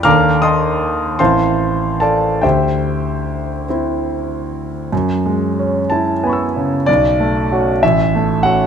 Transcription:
0.03 1.16 D#2 soft
0.03 1.15 D4 soft
0.03 1.15 A4 soft
0.03 0.39 F5 medium
0.03 0.39 A#5 medium
0.03 0.39 D6 medium
0.03 0.41 F6 medium
0.42 1.16 D#5 soft
0.42 1.16 A5 soft
0.42 1.16 C6 soft
0.42 1.19 D#6 medium
1.19 2.40 A1 soft
1.19 2.40 C4 soft
1.19 2.40 E4 soft
1.19 1.98 C5 medium
1.19 1.98 F5 soft
1.19 1.98 A5 soft
1.19 2.01 C6 medium
2.00 2.40 A4 soft
2.00 2.41 D5 soft
2.00 2.40 F5 soft
2.00 2.42 A5 medium
2.42 4.88 D2 soft
2.42 3.64 G4 soft
2.42 3.64 C5 soft
2.42 3.64 E5 soft
2.42 3.68 G5 soft
3.69 4.89 C4 soft
3.69 4.89 E4 soft
4.92 6.84 F#2 soft
5.26 5.79 G#3 soft
5.59 6.12 C#4 soft
5.90 6.43 E4 soft
5.90 6.87 A5 medium
6.23 6.75 B3 soft
6.23 6.84 G#5 soft
6.23 6.85 B5 soft
6.29 6.86 C#6 soft
6.29 6.88 E6 soft
6.56 6.88 C#3 soft
6.86 7.80 B1 soft
6.86 7.82 D5 medium
7.20 7.70 A3 soft
7.52 7.80 C#4 soft
7.52 7.80 F#4 soft
7.83 8.67 A1 soft
7.83 8.43 E5 medium
8.15 8.62 A3 soft
8.43 8.67 C#4 soft
8.43 8.67 F#4 soft
8.43 8.67 F#5 medium

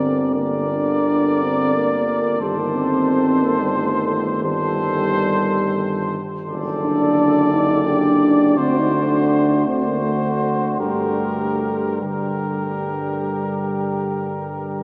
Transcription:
0.00 2.36 G1 soft
0.00 0.33 D3 soft
0.00 0.39 C4 medium
0.00 0.33 A#4 soft
0.00 0.33 D5 soft
0.35 2.36 D3 soft
0.35 0.74 A#3 medium
0.35 2.42 A#4 soft
0.35 2.36 D5 soft
0.72 1.44 D4 medium
1.42 1.75 C4 medium
1.76 2.44 A#3 medium
2.40 6.18 G1 medium
2.40 4.40 D#3 medium
2.40 2.61 G3 medium
2.40 4.27 A4 medium
2.40 4.40 C5 soft
2.60 2.77 A#3 medium
2.75 3.45 C4 medium
3.44 3.62 A#3 medium
3.61 3.79 G3 medium
3.77 4.46 A3 medium
4.44 6.18 D#3 medium
4.44 6.15 G3 medium
4.44 6.18 A4 medium
4.44 6.18 C5 medium
6.47 8.59 F#1 medium
6.47 8.54 D3 medium
6.47 7.83 A4 medium
6.47 8.59 D5 medium
6.83 7.53 D4 medium
7.52 7.89 D#4 medium
7.87 8.59 D4 medium
7.87 8.60 G4 soft
8.57 10.80 D2 medium
8.57 9.65 D3 soft
8.57 8.79 C4 medium
8.57 9.65 F#4 soft
8.57 9.67 C5 soft
8.78 8.94 D#4 medium
8.94 9.68 D4 medium
9.66 10.78 D3 soft
9.66 9.85 C4 medium
9.66 10.81 F#4 soft
9.66 10.78 C5 soft
9.86 10.05 A#3 medium
10.04 10.80 A3 medium
10.80 14.83 G2 soft
10.80 11.99 D3 soft
10.80 12.04 A3 medium
10.80 12.01 G4 soft
10.80 11.99 A#4 soft
12.01 14.83 D3 soft
12.01 14.83 G3 soft
12.01 14.83 G4 soft
12.01 14.83 A#4 soft

